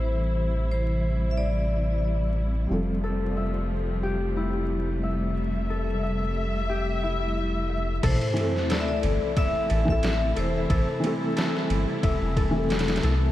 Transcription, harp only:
X:1
M:4/4
L:1/8
Q:"Swing 16ths" 1/4=90
K:Am
V:1 name="Harp"
z8 | z A e z G E2 e | z A e z G E2 e | A2 A z e A z A |
A2 A z e A z A |]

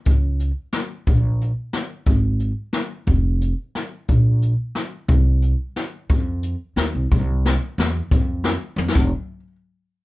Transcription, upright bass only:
X:1
M:3/4
L:1/8
Q:"Swing" 1/4=179
K:Cphr
V:1 name="Upright bass" clef=bass
D,,4 z2 | B,,,4 z2 | A,,,4 z2 | F,,,4 z2 |
B,,,4 z2 | C,,4 z2 | F,,4 E,, C,, | C,,4 =E,,2 |
F,,4 F,, F,,, | z6 |]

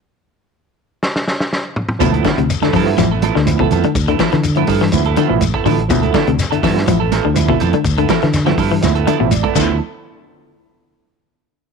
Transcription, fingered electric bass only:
X:1
M:4/4
L:1/16
Q:1/4=123
K:Ddor
V:1 name="Fingered electric bass" clef=bass
z16 | D,,2 z D,, z2 G,,2 A,,,3 D,,3 F,, z | D,,2 z D,3 G,,2 D,,2 z A,,,2 z A,,,2 | D,,2 z D,, z2 G,,2 A,,,3 D,,3 F,, z |
D,,2 z D,3 G,,2 D,,2 z A,,,2 z D,,2 | z16 |]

